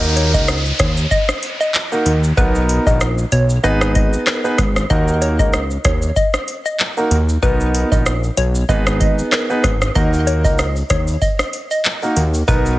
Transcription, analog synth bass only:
Already playing: D#2
0.34 C#2
0.80 D#2
2.06 D#2
2.38 B1
2.87 A#1
3.32 B1
3.64 G#1
4.59 G#1
4.90 D#2
5.39 C#2
5.85 D#2
7.11 D#2
7.43 B1
7.92 A#1
8.37 B1
8.69 G#1
9.64 G#1
9.96 D#2
10.45 C#2
10.90 D#2
12.16 D#2
12.48 B1

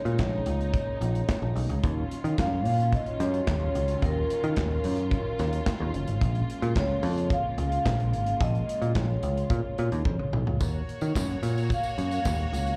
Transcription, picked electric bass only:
0.05 A#2
0.19 A#1
0.46 C#2
1.01 A#1
1.42 A#1
1.55 B1
1.69 C#2
1.83 D#2
2.24 D#3
2.38 F#2
2.65 A#2
3.20 F#2
3.48 D#2
3.75 C#2
4.02 D#2
4.44 D#3
4.57 D#2
4.85 F#2
5.39 D#2
5.80 D#2
5.94 F#1
6.08 G#1
6.21 A#1
6.62 A#2
6.76 C#2
7.03 F2
7.58 C#2
7.86 A#1
8.13 G#1
8.41 A#1
8.82 A#2
8.95 A#1
9.23 C#2
9.50 A#2
9.79 A#2
9.92 D#2
10.05 F2
10.33 B1
10.47 C#2
10.61 D#2
11.02 D#3
11.15 F#2
11.43 A#2
11.98 F#2
12.25 D#2
12.52 C#2

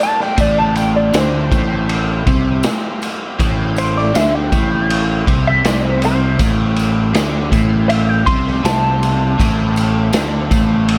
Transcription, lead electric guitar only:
0.03 A5
0.23 G5
0.41 D5
0.58 A5
0.77 G5
0.96 D5
1.17 C5
3.78 C5
3.97 D5
4.16 E5
4.35 G5
5.47 E5
5.66 D5
5.82 C5
6.05 C5
7.89 E5
8.09 G5
8.26 C6
8.65 A5

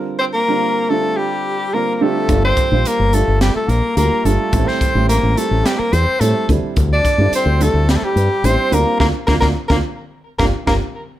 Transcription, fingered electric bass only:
2.29 G1
2.72 A#1
2.85 muted fingered electric bass stroke
2.99 G1
3.28 G1
3.68 A#1
3.97 D2
4.11 muted fingered electric bass stroke
4.25 G1
4.53 A1
4.81 muted fingered electric bass stroke
4.95 A1
5.23 A1
5.51 A1
5.79 muted fingered electric bass stroke
5.93 E2
6.07 muted fingered electric bass stroke
6.21 A2
6.49 D2
6.63 muted fingered electric bass stroke
6.77 D2
7.18 G2
7.32 muted fingered electric bass stroke
7.46 D2
7.74 D2
8.02 muted fingered electric bass stroke
8.16 G2
8.44 A1
8.72 D2
9.00 D2
9.28 D2
9.42 D2
9.70 D2
10.39 G1
10.67 G1

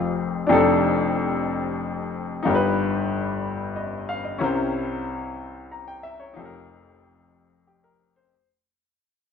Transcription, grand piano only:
Already playing: F1 F2 D#4 F4 G4 A#4 C5
0.47 F1 F2 D4 D#4
0.51 G4 A4
2.43 G1 G2 D#4 F4 G4
2.48 A#4
2.55 B4
3.76 D#5
4.09 F5
4.25 D#5
4.38 C2 C3 C#4 E4 A#4
4.44 C5
5.72 A#5
5.88 G5
6.03 E5
6.20 C#5
6.33 F1 F2 D#4 F4
6.38 G4 A4
6.45 A#4
7.67 G4
7.84 A#4
8.16 C5

